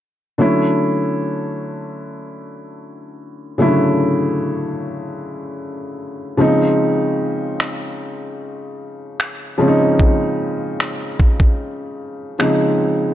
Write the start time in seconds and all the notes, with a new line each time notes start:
0.38 D3 F#3 A3 C#4 E4
3.58 C#3 F#3 A3 C#4 E4
3.65 D3
6.37 C#3 F3 G#3 C4 D#4
7.60 finger snap
9.20 finger snap
9.58 C#3 F3 G#3 C4 C#4
9.68 D#4
10.00 kick
10.80 finger snap
11.20 kick
11.40 kick
12.39 C#3 F3 G#3 C4 D#4, finger snap